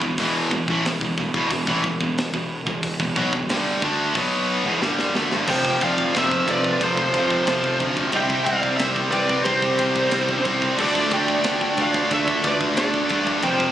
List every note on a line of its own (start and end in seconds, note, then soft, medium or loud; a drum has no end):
0.02 0.17 E1 medium
0.02 0.18 E2 medium
0.02 0.18 B2 medium
0.02 kick medium
0.18 0.48 E1 medium
0.18 0.50 E2 medium
0.18 0.50 B2 loud
0.18 0.51 E3 loud
0.18 kick loud
0.18 open hi-hat medium
0.51 0.66 E1 medium
0.51 0.68 E2 medium
0.51 0.68 B2 medium
0.51 kick medium
0.68 0.83 A1 loud
0.68 0.84 A2 medium
0.68 0.84 E3 loud
0.68 kick medium
0.85 0.99 E1 medium
0.85 1.01 E2 medium
0.85 1.01 B2 medium
0.85 snare loud
0.85 open hi-hat medium
1.01 1.16 E1 medium
1.01 1.16 E2 medium
1.01 1.17 B2 medium
1.01 kick medium
1.18 1.33 E1 medium
1.18 1.33 E2 medium
1.18 1.34 B2 medium
1.18 kick medium
1.34 1.49 E1 medium
1.34 1.49 E2 medium
1.34 1.50 B2 medium
1.34 kick loud
1.50 1.66 E1 medium
1.50 1.67 E2 medium
1.50 1.66 B2 medium
1.50 kick medium
1.50 open hi-hat medium
1.67 1.82 A1 medium
1.67 1.82 A2 medium
1.67 1.83 E3 loud
1.67 kick loud
1.83 1.99 E1 medium
1.83 2.00 E2 medium
1.83 1.99 B2 medium
1.83 kick medium
2.01 2.31 E1 medium
2.01 2.27 E2 medium
2.01 2.27 B2 medium
2.01 kick medium
2.18 snare loud
2.18 open hi-hat medium
2.34 2.64 E1 medium
2.34 2.60 E2 medium
2.34 2.60 B2 medium
2.34 kick medium
2.67 2.97 E1 medium
2.67 2.93 E2 medium
2.67 2.93 B2 medium
2.67 kick medium
2.83 kick loud
2.83 open hi-hat medium
3.00 3.15 E1 medium
3.00 3.16 E2 medium
3.00 3.16 B2 medium
3.00 kick medium
3.16 3.31 B1 medium
3.16 3.32 B2 medium
3.16 3.32 F#3 loud
3.16 kick loud
3.33 3.46 E1 medium
3.33 3.50 E2 medium
3.33 3.50 B2 medium
3.33 kick medium
3.47 3.79 G1 medium
3.47 snare loud
3.47 open hi-hat medium
3.51 3.82 G2 medium
3.51 3.82 D3 medium
3.51 3.82 G3 loud
3.82 4.13 D2 medium
3.82 4.15 D3 loud
3.82 4.15 A3 medium
3.82 4.15 D4 loud
3.82 kick loud
4.15 4.61 B1 medium
4.15 4.64 B2 medium
4.15 4.65 F#3 loud
4.15 4.65 B3 loud
4.15 kick loud
4.15 open hi-hat medium
4.63 4.79 E1 medium
4.63 4.80 E2 medium
4.63 4.81 B2 loud
4.81 5.13 G1 medium
4.81 5.13 G2 medium
4.81 5.14 D3 medium
4.81 5.14 G3 loud
4.81 snare medium
4.99 snare medium
5.15 5.30 D2 loud
5.15 5.31 D3 medium
5.15 5.31 A3 loud
5.15 snare medium
5.31 5.47 G1 medium
5.31 5.47 G2 medium
5.31 5.47 D3 medium
5.31 snare medium
5.46 5.70 F1 loud
5.46 5.79 F2 loud
5.46 5.80 C3 loud
5.46 5.81 F3 loud
5.46 10.74 C4 medium
5.46 8.10 F4 medium
5.46 8.10 A4 medium
5.46 5.83 G5 loud
5.46 kick medium
5.46 crash loud
5.51 5.81 C5 loud
5.65 kick medium
5.81 6.04 F1 medium
5.81 6.13 F2 medium
5.81 6.13 C3 loud
5.81 6.14 F3 loud
5.81 6.14 D5 medium
5.81 6.16 F5 loud
5.81 kick medium
5.81 ride medium
5.98 kick medium
6.14 6.38 F1 medium
6.14 6.46 F2 medium
6.14 6.47 C3 loud
6.14 6.47 F3 loud
6.14 6.47 C5 medium
6.14 6.50 E5 loud
6.14 kick medium
6.14 snare loud
6.14 ride loud
6.31 kick medium
6.47 6.71 F1 medium
6.47 6.80 F2 loud
6.47 6.80 C3 loud
6.47 6.81 F3 loud
6.47 6.83 D5 medium
6.47 kick medium
6.47 ride medium
6.51 6.80 B4 medium
6.64 kick medium
6.81 7.04 F1 loud
6.81 7.12 F2 medium
6.81 7.12 C3 medium
6.81 7.12 F3 loud
6.81 7.77 A4 medium
6.81 7.78 C5 medium
6.81 kick medium
6.81 ride loud
6.97 kick medium
7.13 7.37 F1 medium
7.13 7.45 F2 medium
7.13 7.45 C3 loud
7.13 7.45 F3 loud
7.13 kick medium
7.13 ride medium
7.31 kick medium
7.46 7.70 F1 medium
7.46 7.78 F2 medium
7.46 7.78 C3 medium
7.46 7.78 F3 loud
7.46 kick medium
7.46 snare loud
7.46 ride loud
7.64 kick medium
7.79 8.03 D2 loud
7.79 8.11 F2 medium
7.79 8.11 C3 medium
7.79 8.11 F3 loud
7.79 kick medium
7.79 ride medium
7.97 kick medium
8.12 8.36 C2 medium
8.12 8.43 C3 loud
8.12 8.44 G3 loud
8.12 8.44 C4 loud
8.12 10.76 G4 medium
8.12 8.45 E5 loud
8.12 10.77 G5 medium
8.12 kick medium
8.12 ride loud
8.16 8.45 G5 loud
8.30 kick medium
8.44 8.70 C2 medium
8.44 8.77 C3 medium
8.44 8.77 G3 loud
8.44 8.78 C4 medium
8.44 8.77 F5 medium
8.44 kick medium
8.44 ride medium
8.49 8.79 D5 medium
8.63 kick medium
8.77 9.03 C2 loud
8.77 9.10 C3 medium
8.77 9.11 G3 loud
8.77 9.12 C4 loud
8.77 8.90 C5 medium
8.77 8.86 E5 loud
8.77 kick medium
8.77 snare loud
8.77 ride loud
8.96 kick medium
9.11 9.36 C2 medium
9.11 9.46 C3 medium
9.11 9.45 G3 medium
9.11 9.46 C4 loud
9.11 9.43 B4 medium
9.11 9.43 D5 medium
9.11 kick medium
9.11 ride medium
9.29 kick medium
9.44 9.69 C2 medium
9.44 9.78 C3 medium
9.44 9.78 G3 loud
9.44 9.78 C4 loud
9.44 10.41 G4 medium
9.44 10.41 C5 medium
9.44 kick medium
9.44 ride loud
9.62 kick medium
9.79 10.03 C2 medium
9.79 10.11 C3 loud
9.79 10.11 G3 loud
9.79 10.12 C4 loud
9.79 kick loud
9.79 ride medium
9.96 kick medium
10.11 10.35 C2 loud
10.11 10.43 C3 medium
10.11 10.43 G3 loud
10.11 10.44 C4 loud
10.11 kick medium
10.11 snare loud
10.11 ride loud
10.29 kick medium
10.44 10.68 C2 loud
10.44 10.76 C3 loud
10.44 10.76 G3 medium
10.44 10.77 C4 medium
10.44 kick medium
10.44 ride medium
10.62 kick medium
10.76 11.02 D2 medium
10.76 11.10 D3 loud
10.76 13.72 A3 medium
10.76 11.11 A3 loud
10.76 11.11 D4 loud
10.76 13.41 F4 medium
10.76 13.41 D5 loud
10.76 kick medium
10.76 crash loud
10.82 11.12 A4 medium
10.82 11.14 D5 loud
10.95 kick medium
11.11 11.35 D2 medium
11.11 11.43 D3 medium
11.11 11.44 A3 medium
11.11 11.44 D4 loud
11.11 11.75 D5 loud
11.11 11.81 G5 loud
11.11 kick medium
11.11 ride medium
11.28 kick medium
11.44 11.68 D2 medium
11.44 11.77 D3 loud
11.44 11.78 A3 loud
11.44 11.77 D4 loud
11.44 kick medium
11.44 snare loud
11.44 ride loud
11.61 kick medium
11.77 12.01 D2 medium
11.77 12.10 D3 medium
11.77 12.10 A3 loud
11.77 12.10 D4 loud
11.77 12.10 D5 medium
11.77 kick medium
11.77 ride medium
11.82 12.11 F5 loud
11.94 kick medium
12.11 12.34 D2 loud
12.11 12.42 D3 medium
12.11 12.42 A3 medium
12.11 12.42 D4 loud
12.11 12.44 A4 medium
12.11 12.43 E5 loud
12.11 kick medium
12.11 ride loud
12.28 kick medium
12.43 12.67 D2 medium
12.43 12.74 D3 loud
12.43 12.75 A3 medium
12.43 12.75 D4 loud
12.43 12.55 B4 medium
12.43 12.54 D5 medium
12.43 kick loud
12.43 ride medium
12.61 kick medium
12.75 13.01 D2 loud
12.75 13.07 D3 medium
12.75 13.08 A3 medium
12.75 13.08 D4 loud
12.75 13.25 A4 medium
12.75 13.24 D5 loud
12.75 kick medium
12.75 snare loud
12.75 ride loud
12.94 kick medium
13.08 13.34 G2 medium
13.08 13.41 D3 medium
13.08 13.42 A3 medium
13.08 13.42 D4 loud
13.08 kick medium
13.08 ride medium
13.27 kick medium
13.41 13.67 F1 loud
13.41 13.72 F2 loud
13.41 13.72 C3 loud
13.41 13.72 F3 loud
13.41 13.72 C5 medium
13.41 13.72 G5 loud
13.41 kick medium
13.41 ride loud
13.46 13.72 F2 loud
13.46 13.72 F4 medium
13.46 13.72 C5 loud
13.60 kick medium